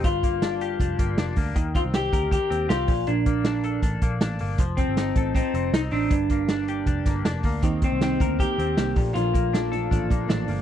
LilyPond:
<<
  \new Staff \with { instrumentName = "Clean electric guitar" } { \time 4/4 \key bes \major \tempo 4 = 158 f'2.~ f'8 r8 | r8 f'8 g'4 g'4 f'4 | d'2 r2 | r8 c'4. c'4 ees'8 d'8~ |
d'2. r4 | r8 c'8 c'4 g'2 | f'2.~ f'8 r8 | }
  \new Staff \with { instrumentName = "Clean electric guitar" } { \time 4/4 \key bes \major g,8 bes8 d'8 g'8 d'8 bes8 d'8 bes8 | ees8 c'8 g'8 bes'8 g'8 c'8 g'8 bes,8 | bes,8 bes8 d'8 a'8 d'8 bes8 d'8 bes8 | f8 c'8 ees'8 a'8 ees'8 c'8 ees'8 c'8 |
g,8 bes8 d'8 g'8 d'8 bes8 d'8 bes8 | ees8 c'8 g'8 bes'8 g'8 c'8 g'8 bes,8 | bes,8 bes8 d'8 a'8 d'8 bes8 d'8 bes8 | }
  \new Staff \with { instrumentName = "Steel-string acoustic guitar" } { \time 4/4 \key bes \major r1 | r1 | r1 | r1 |
r1 | <ees bes c' g'>8 <bes c' g'>8 <ees bes c' g'>8 <bes c' g'>8 <ees bes c' g'>8 <bes c' g'>8 <ees bes c' g'>8 <f a d'>8 | <bes, f a d'>8 <f a d'>8 <bes, f a d'>8 <f a d'>8 <bes, f a d'>8 <f a d'>8 <bes, f a d'>8 <f a d'>8 | }
  \new Staff \with { instrumentName = "Picked electric bass" } { \clef bass \time 4/4 \key bes \major g,,2 f,,8 g,,8 f,,8 d,8 | ees,8. c,8. d,8. r16 ees,8 c,8 bes,,8 | bes,,2 a,,8 bes,,8 a,,8 g,,8 | f,,8. g,,8. a,,8. r16 f,,8 c,8 a,,8 |
g,,2 f,,8 g,,8 f,,8 d,8 | ees,8. c,8. d,8. r16 ees,8 c,8 bes,,8 | bes,,2 a,,8 bes,,8 a,,8 g,,8 | }
  \new DrumStaff \with { instrumentName = "Drums" } \drummode { \time 4/4 <hh bd>8 <hh bd>8 <hh sn>8 hh8 <hh bd>8 <hh bd>8 <hh sn>8 <hho bd>8 | <hh bd>8 <hh bd>8 <hh sn>8 <hh bd>8 <hh bd>8 hh8 <hh sn>8 <hho bd>8 | hh8 <hh bd>8 <hh sn>8 hh8 <hh bd>8 <hh bd>8 <hh sn>8 hho8 | <hh bd>8 <hh bd>8 <hh sn>8 <hh bd>8 <hh bd>8 hh8 <hh sn>8 hho8 |
<hh bd>8 <hh bd>8 <hh sn>8 hh8 <hh bd>8 <hh bd sn>8 <hh sn>8 <hho bd>8 | <hh bd>8 <hh bd>8 <hh sn>8 <hh bd>8 <hh bd>8 hh8 <hh sn>8 <hho bd>8 | hh8 <hh bd>8 <hh sn>8 hh8 <hh bd>8 <hh bd>8 <hh sn>8 hho8 | }
>>